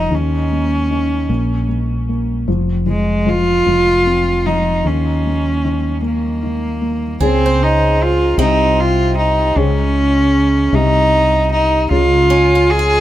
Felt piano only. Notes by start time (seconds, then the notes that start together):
Already playing: F3
0.11 D#3
0.52 A#3
0.90 D#3
1.29 A#3
1.68 A#3
2.09 A#3
2.48 F3
2.86 F3
3.26 F3
3.66 F3
4.06 C4
4.46 F3
4.85 D#3
5.26 A#3
5.64 D#3
6.02 A#3
6.42 D#3
6.82 A#3
7.22 C#3
8.38 C3
9.57 C#3
10.73 C3
11.91 C#3